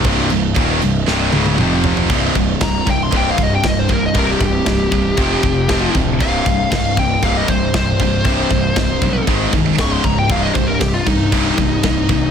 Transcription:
<<
  \new Staff \with { instrumentName = "Lead electric guitar" } { \time 4/4 \key c \minor \tempo 4 = 117 r1 | r4 bes''8 g''16 c'''16 g''16 f''16 ees''16 g''16 ees''16 c''16 bes'16 ees''16 | bes'16 g'16 g'2. r8 | f''4. g''8 f''16 ees''16 c''8 c''4~ |
c''2 r4 des'''16 c'''16 bes''16 g''16 | f''16 ees''16 c''16 bes'16 g'16 f'16 ees'2~ ees'8 | }
  \new Staff \with { instrumentName = "Distorted electric guitar" } { \clef bass \time 4/4 \key c \minor <c, g, c>8 <c, g,>8 <ees, bes, ees>8 <c, g,>8 <c, g, c>8 <des, aes, des>8 <f, c f>4 | <c, g, c>8 <c, g,>8 <c, g,>8 <c, g,>8 <c, g, c>8 <c, g,>8 <c, g,>8 <c, g,>8 | <c, g, c>8 <c, g,>8 <c, g,>8 <c, g,>8 <f, c f>8 <f, c>8 <f, c f>8 <f, c>8 | <c, g, c>8 <c, g,>8 <c, g,>8 <c, g,>8 <c, g, c>8 <c, g,>8 <c, g,>8 <c, g,>8 |
<c, g, c>8 <c, g,>8 <c, g,>8 <c, g,>8 <aes, ees aes>8 <aes, ees>8 <des, aes, des>8 <des, aes,>8 | <c, g, c>8 <c, g,>8 <c, g,>8 <c, g,>8 <c, g, c>8 <c, g,>8 <c, g,>8 <c, g,>8 | }
  \new Staff \with { instrumentName = "Distorted electric guitar" } { \clef bass \time 4/4 \key c \minor <c, g, c>8 <c, g,>8 <ees, bes, ees>8 <c, g,>8 <c, g, c>8 <des, aes, des>8 <f, c f>4 | <c, g, c>8 <c, g,>8 <c, g,>8 <c, g,>8 <c, g, c>8 <c, g,>8 <c, g,>8 <c, g,>8 | <c, g, c>8 <c, g,>8 <c, g,>8 <c, g,>8 <f, c f>8 <f, c>8 <f, c f>8 <f, c>8 | <c, g, c>8 <c, g,>8 <c, g,>8 <c, g,>8 <c, g, c>8 <c, g,>8 <c, g,>8 <c, g,>8 |
<c, g, c>8 <c, g,>8 <c, g,>8 <c, g,>8 <aes, ees aes>8 <aes, ees>8 <des, aes, des>8 <des, aes,>8 | <c, g, c>8 <c, g,>8 <c, g,>8 <c, g,>8 <c, g, c>8 <c, g,>8 <c, g,>8 <c, g,>8 | }
  \new Staff \with { instrumentName = "Distorted electric guitar" } { \clef bass \time 4/4 \key c \minor <c, g, c>8 <c, g,>8 <ees, bes, ees>8 <c, g,>8 <c, g, c>8 <des, aes, des>8 <f, c f>4 | <c, g, c>2 <c, g, c>2 | <c, g, c>2 <f, c f>4 <f, c f>4 | <c, g, c>2 <c, g, c>2 |
<c, g, c>2 <aes, ees aes>4 <des, aes, des>4 | <c, g, c>2 <c, g, c>2 | }
  \new Staff \with { instrumentName = "Picked electric bass" } { \clef bass \time 4/4 \key c \minor c,,8 c,,8 ees,,8 c,,8 c,,8 des,,8 f,,4 | c,,8 c,,8 c,,8 c,,8 c,,8 c,,8 c,,8 c,,8 | c,,8 c,,8 c,,8 c,,8 f,,8 f,,8 f,,8 d,,8 | c,,8 c,,8 c,,8 c,,8 c,,8 c,,8 c,,8 c,,8 |
c,,8 c,,8 c,,8 b,,8 aes,,8 c,,8 des,,8 des,,8 | c,,8 c,,8 c,,8 c,,8 c,,8 c,,8 c,,8 c,,8 | }
  \new DrumStaff \with { instrumentName = "Drums" } \drummode { \time 4/4 <cymc bd>8 cymc8 <cymc bd>8 cymc8 sn8 tommh16 tommh16 toml8 tomfh16 tomfh16 | <cymc bd>8 <cymc bd>8 <cymc bd sn>8 <cymc bd>8 <cymc bd>8 <cymc bd>8 <cymc bd sn>8 <cymc bd>8 | <cymc bd>8 <cymc bd>8 <cymc bd sn>8 <cymc bd>8 <cymc bd>8 <cymc bd>8 <cymc bd sn>8 <cymc bd>8 | <cymc bd>8 <cymc bd>8 <cymc bd sn>8 <cymc bd>8 <cymc bd>8 <cymc bd>8 <cymc bd sn>8 <cymc bd>8 |
<cymc bd>8 <cymc bd>8 <cymc bd sn>8 <cymc bd>8 <cymc bd>8 <cymc bd>8 <cymc bd sn>8 <cymc bd>8 | <cymc bd>8 <cymc bd>8 <cymc bd sn>8 <cymc bd>8 <cymc bd>8 <cymc bd>8 <cymc bd sn>8 <cymc bd>8 | }
>>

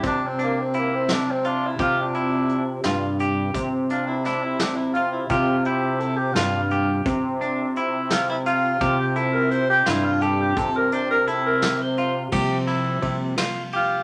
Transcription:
<<
  \new Staff \with { instrumentName = "Clean electric guitar" } { \time 5/8 \key c \mixolydian \tempo 4 = 86 g'8 d'8 e'4 f'8 | g'8 e'4 f'8 g'8~ | g'8 d'8 e'4 f'8 | g'8 e'4 f'8 g'8~ |
g'8 d'8 e'4 f'8 | g'8 e'4 f'8 g'8~ | g'8 d'8 e'4 f'8 | g'8 e'4 f'8 g'8 | }
  \new Staff \with { instrumentName = "Tenor saxophone" } { \time 5/8 \key c \mixolydian d'16 c'16 bes16 c'16 bes16 c'16 d'16 c'16 d'16 e'16 | f'16 d'4 r4 r16 | r8 f'16 e'16 d'16 e'16 d'16 e'16 f'16 e'16 | f'8 g'8 a'16 g'16 f'4 |
r4. f'16 e'16 f'8~ | f'16 g'16 a'16 bes'16 c''16 g'16 e'16 f'16 a'16 g'16 | a'16 bes'16 c''16 bes'16 a'16 bes'8 c''8 r16 | r2 f'8 | }
  \new Staff \with { instrumentName = "Tine electric piano" } { \time 5/8 \key c \mixolydian <c c' f' g'>2~ <c c' f' g'>8 | <c c' f' g'>2~ <c c' f' g'>8~ | <c c' f' g'>2~ <c c' f' g'>8 | <c c' f' g'>2~ <c c' f' g'>8~ |
<c c' f' g'>2~ <c c' f' g'>8 | <c c' f' g'>2~ <c c' f' g'>8~ | <c c' f' g'>2~ <c c' f' g'>8 | <c f g bes>2~ <c f g bes>8 | }
  \new Staff \with { instrumentName = "Analog synth bass" } { \clef bass \time 5/8 \key c \mixolydian c2~ c8 | c4. g,4 | c2~ c8 | c4. g,4 |
c2~ c8 | c4. g,4 | c2~ c8 | c4 c8 r4 | }
  \new DrumStaff \with { instrumentName = "Drums" } \drummode { \time 5/8 <hh bd>8 hh8 hh8 <hh sn>8 hh8 | <hh bd>8 hh8 hh8 <hh sn>8 hh8 | <hh bd>8 hh8 <hh sn>8 <hh sn>8 hh8 | <hh bd>8 hh8 hh8 <hh sn>8 hh8 |
<hh bd>8 hh8 hh8 <hh sn>8 hh8 | <hh bd>8 hh8 hh8 <hh sn>8 hh8 | <hh bd>8 hh8 hh8 <hh sn>8 hh8 | <cymc bd>8 cymr8 <bd cymr>8 <cymr sn>8 cymr8 | }
>>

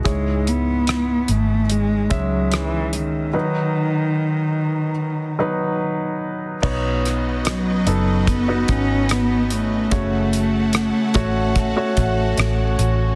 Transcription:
<<
  \new Staff \with { instrumentName = "String section" } { \time 4/4 \key b \mixolydian \tempo 4 = 73 << { r1 | r1 | <fis' b' dis''>1 | <fis' a' fis''>1 | } \\ { r1 | r1 | cis'1~ | cis'1 | } >> }
  \new Staff \with { instrumentName = "Upright piano" } { \time 4/4 \key b \mixolydian <e' gis' cis''>2 r8 <gis cis' e''>4. | <fis dis' b'>2 r8 <fis dis' b'>4. | <b dis' cis''>4. <b dis' a'>8. <b dis' fis'>4.~ <b dis' fis'>16 | <a fis' cis''>4. <a fis' cis''>8. <a fis' cis''>4.~ <a fis' cis''>16 | }
  \new Staff \with { instrumentName = "Upright piano" } { \clef bass \time 4/4 \key b \mixolydian gis,4. r2 r8 | r1 | r1 | cis4. r2 r8 | }
  \new Staff \with { instrumentName = "Cello" } { \clef bass \time 4/4 \key b \mixolydian gis8 b4 a8 gis8 fis8 e8 dis8~ | dis2. r4 | r4 fis4 b8 cis'8 b8 a8~ | a2.~ a8 r8 | }
  \new Staff \with { instrumentName = "Fingered electric bass" } { \clef bass \time 4/4 \key b \mixolydian cis,4. gis,,4 cis,4. | r1 | b,,4. fis,,4 gis,,4. | fis,,4~ fis,,16 r16 a,,8. r16 a,,8 a,,8 a,,8 | }
  \new DrumStaff \with { instrumentName = "Drums" } \drummode { \time 4/4 <hh bd>8 hh8 <hh ss>8 hh8 hh8 <hh bd>8 <hh ss>8 hh8 | r4 r4 r4 r4 | <cymc bd>8 <hh ss>8 <hh ss>8 hh8 <hh bd>8 <hh bd>8 <hh ss>8 hh8 | <hh bd>8 hh8 <hh ss>8 <hh bd>8 <hh bd>8 <hh bd>8 <hh ss>8 hh8 | }
>>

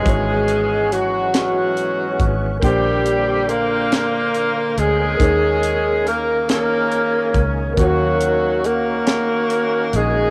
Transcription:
<<
  \new Staff \with { instrumentName = "Horn section" } { \time 6/8 \key dis \phrygian \tempo 4. = 47 << { gis'4 fis'8 fis'4 r8 | g'4 ais'4. gis'8~ | gis'4 ais'8 ais'4 r8 | fis'4 ais'4. gis'8 | } \\ { <b cis'>4 r8 <b cis'>4. | <bis d'>4 <d' eis'>4. cis'8~ | cis'4 r8 cis'4. | <ais cis'>4 <cis' fis'>4. dis'8 | } >> }
  \new Staff \with { instrumentName = "Grand piano" } { \time 6/8 \key dis \phrygian <gis e' fis' cis''>2. | <d ais bis' g''>2. | <ais dis' gis' cis''>2. | <ais dis' fis' cis''>2. | }
  \new Staff \with { instrumentName = "Grand piano" } { \clef bass \time 6/8 \key dis \phrygian gis,4. r4. | ais,4. r4. | dis4. r4. | dis4. r4. | }
  \new Staff \with { instrumentName = "Tonewheel organ" } { \time 6/8 \key dis \phrygian <e gis cis' fis'>2. | <d ais bis' g''>2. | <dis ais cis' gis'>2. | <dis ais cis' fis'>2. | }
  \new Staff \with { instrumentName = "Tenor saxophone" } { \clef bass \time 6/8 \key dis \phrygian gis4 fis8 fis4 r8 | g4 ais4. gis8~ | gis4 ais8 ais4 r8 | fis4 ais4. gis8 | }
  \new Staff \with { instrumentName = "Fingered electric bass" } { \clef bass \time 6/8 \key dis \phrygian gis,,2~ gis,,8 gis,,8 | ais,,2~ ais,,8 d,8 | dis,2~ dis,8 cis,8 | dis,2~ dis,8 ais,,8 | }
  \new DrumStaff \with { instrumentName = "Drums" } \drummode { \time 6/8 <hh bd>8 hh8 hh8 <hh sn>8 hh8 <hh bd>8 | <hh bd>8 hh8 hh8 <hh sn>8 hh8 hh8 | <hh bd>8 hh8 hh8 <hh sn>8 hh8 <hh bd>8 | <hh bd>8 hh8 hh8 <hh sn>8 hh8 hh8 | }
>>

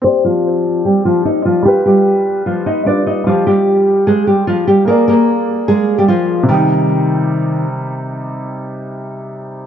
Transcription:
<<
  \new Staff \with { instrumentName = "Grand piano" } { \time 4/4 \key c \minor \tempo 4 = 149 <c' g' d''>1 | <g f' b'>2. <g f' b'>4 | <g f' g'>1 | <bes aes' d''>1 |
<c g ees'>1~ | <c g ees'>1 | }
  \new Staff \with { instrumentName = "Nylon-string guitar" } { \time 4/4 \key c \minor <c' c''>8 <f f'>4. <g g'>8 <f f'>8 <ees' ees''>8 <f f'>8 | <g g'>8 <g g'>4. <f f'>8 <ees' ees''>8 <d' d''>8 <ees' ees''>8 | <f f'>8 <g g'>4. <aes aes'>8 <g g'>8 <f f'>8 <g g'>8 | <bes bes'>8 <bes bes'>4. <aes aes'>8. <g g'>16 <f f'>4 |
ees2. r4 | r1 | }
>>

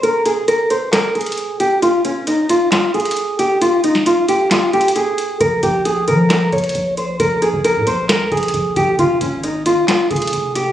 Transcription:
<<
  \new Staff \with { instrumentName = "Nylon-string guitar" } { \time 4/4 \key f \minor \tempo 4 = 134 bes'8 aes'8 bes'8 c''8 bes'8 aes'4 g'8 | f'8 des'8 ees'8 f'8 f'8 aes'4 g'8 | f'8 ees'8 f'8 g'8 f'8 g'8 aes'4 | bes'8 g'8 aes'8 bes'8 bes'8 des''4 c''8 |
bes'8 aes'8 bes'8 c''8 bes'8 aes'4 g'8 | f'8 des'8 ees'8 f'8 f'8 aes'4 g'8 | }
  \new Staff \with { instrumentName = "808-style bass" } { \clef bass \time 4/4 \key f \minor r1 | r1 | r1 | bes,,8 bes,,4 f4 bes,,8 bes,,4 |
bes,,8. bes,,8 bes,16 bes,,8. des,16 bes,,8 bes,,8 bes,,8 | f,,8 aes,,4~ aes,,16 r8. f,,8 f,,4 | }
  \new DrumStaff \with { instrumentName = "Drums" } \drummode { \time 4/4 hh8 hh8 hh8 hh8 <hc hh sn>8 hh32 hh32 hh32 hh32 hh8 hh8 | hh8 hh8 hh8 hh8 <hc hh sn>8 hh32 hh32 hh32 hh32 hh8 hh8 | hh8 hh16 sn16 hh8 hh8 \tuplet 3/2 { <hc hh sn>16 r16 r16 hh16 hh16 hh16 } hh8 hh8 | <hh bd>8 <hh bd>8 hh8 hh8 <hc hh sn>8 <hh bd>32 hh32 hh32 hh32 hh8 hh8 |
<hh bd>8 hh16 bd16 hh8 hh8 <hc hh sn>8 <hh bd>32 hh32 hh32 hh32 <hh bd>8 <hh bd>8 | <hh bd>8 <hh bd>8 hh8 hh8 <hc hh sn>8 <hh bd>32 hh32 hh32 hh32 hh8 hh8 | }
>>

